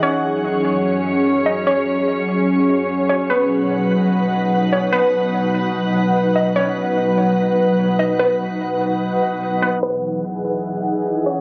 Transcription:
<<
  \new Staff \with { instrumentName = "Synth pluck" } { \time 4/4 \key b \major \tempo 4 = 147 cis''4 r2 r8 dis''8 | cis''4 r2 r8 cis''8 | b'4 r2 r8 cis''8 | b'4 r2 r8 dis''8 |
cis''4 r2 r8 dis''8 | b'4 r2 r8 b'8 | b'4 r2 r8 cis''8 | }
  \new Staff \with { instrumentName = "Ambient pad" } { \time 4/4 \key b \major << { <fis, cis' gis' cis''>1~ | <fis, cis' gis' cis''>1 | <b, dis' b' fis''>1~ | <b, dis' b' fis''>1~ |
<b, dis' b' fis''>1~ | <b, dis' b' fis''>1 | <e, dis' gis' fis''>1 | } \\ { fis1~ | fis1~ | fis1~ | fis1~ |
fis1~ | fis1 | e1 | } >> }
>>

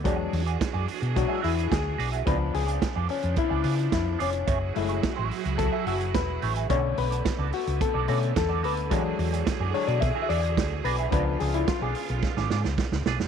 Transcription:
<<
  \new Staff \with { instrumentName = "Clean electric guitar" } { \time 4/4 \key e \mixolydian \tempo 4 = 108 <b fis' gis' d''>16 r8 <b fis' gis' d''>16 r16 <b fis' gis' d''>16 r8. <b fis' gis' e''>16 <b fis' gis' e''>16 r8. <b fis' gis' d''>16 <b fis' gis' e''>16 | <b eis' gis' d''>16 r8 <b eis' gis' d''>16 r16 <b eis' gis' d''>16 r8. <b eis' gis' d''>16 <b eis' gis' d''>16 r8. <b eis' gis' d''>16 r16 | <a e' gis' cis''>16 r8 <a e' gis' cis''>16 r16 <a e' gis' cis''>16 r8. <a e' gis' e''>16 <a e' gis' e''>16 r8. <a e' gis' cis''>16 <a e' gis' e''>16 | <b fis' a' d''>16 r8 <b fis' a' d''>16 r16 <b fis' a' d''>16 r8. <b fis' a' d''>16 <b fis' a' d''>16 r8 <b fis' a' d''>16 <b fis' a' d''>16 r16 |
<b fis' gis' d''>16 r8 <b fis' gis' d''>16 r16 <b fis' gis' d''>16 r8. <b fis' gis' e''>16 <b fis' gis' e''>16 r8. <b fis' gis' d''>16 <b fis' gis' e''>16 | <b eis' gis' d''>16 r8 <b eis' gis' d''>16 r16 <b eis' gis' d''>16 r8. <b eis' gis' d''>16 <b eis' gis' d''>16 r8. <b eis' gis' d''>16 r16 | }
  \new Staff \with { instrumentName = "Clav" } { \time 4/4 \key e \mixolydian r2 fis'8 e'8 gis'4 | b'8 gis'4 cis'8 e'4 e'8 cis'8~ | cis'8 r4. a'8 fis'8 b'4 | cis''8 b'4 fis'8 a'4 a'8 b'8~ |
b'8 r4 cis''16 d''16 e''16. e''32 d''4 b'8 | b'8 gis'16 e'16 eis'16 gis'4 r4. r16 | }
  \new Staff \with { instrumentName = "Clav" } { \time 4/4 \key e \mixolydian <fis gis d'>8 r4. <fis gis d'>8 r4. | <eis b d'>8 r2. r8 | r8 <gis a e'>8 r2. | <d a cis'>8 r2 <d a cis'>8 r4 |
<fis gis d'>4. <fis gis d'>8 r2 | <eis b d'>4. r2 r8 | }
  \new Staff \with { instrumentName = "String section" } { \time 4/4 \key e \mixolydian <e d' fis' gis'>1 | <cis eis b d'>1 | <fis e' fis' gis'>1 | <d a b>1 |
<e fis' gis'>1 | <cis b eis'>1 | }
  \new Staff \with { instrumentName = "Fingered electric bass" } { \clef bass \time 4/4 \key e \mixolydian e,8 e,8 r16 fis,16 r16 b,8 r16 e,8 d,8 b,,8 | cis,8 cis,8 r16 eis,16 r16 eis,16 r16 cis,16 cis8 eis,8 eis,,8 | fis,,8 fis,,8 r16 a,,16 r16 cis,8 r16 fis,,8 e,,8 a,,8 | b,,8 b,,8 r16 cis,16 r16 cis,16 r16 b,,16 b,8 e,8 d,8 |
e,8 e,8 r16 fis,16 r16 b,8 r16 e,8 d,8 b,,8 | cis,8 cis,8 r16 b,,16 r16 b,,16 r16 gis,,16 gis,16 cis,16 r16 cis,16 b,,16 eis,,16 | }
  \new DrumStaff \with { instrumentName = "Drums" } \drummode { \time 4/4 <hh bd>8 hho16 hh16 <hh bd sn>8 hho16 hh16 <hh bd>8 hho16 hh16 <hh bd sn>8 hho16 hh16 | <hh bd>8 hho16 hh16 <hh bd sn>8 hho16 hh16 <hh bd>8 hho16 hh16 <hh bd sn>8 hho16 hh16 | <hh bd>8 hho16 hh16 <hh bd sn>8 hho16 hh16 <hh bd>8 hho16 hh16 <hh bd sn>8 hho16 hh16 | <hh bd>8 hho16 hh16 <hh bd sn>8 hho16 hh16 <hh bd>8 hho16 hh16 <hh bd sn>8 hho16 hh16 |
<hh bd>8 hho16 hh16 <hh bd sn>8 hho16 hh16 <hh bd>8 hho16 hh16 <hh bd sn>8 hho16 hh16 | <hh bd>8 hho16 hh16 <hh bd sn>8 hho16 hh16 <bd sn>16 sn16 sn16 sn16 <bd sn>16 sn16 sn16 sn16 | }
>>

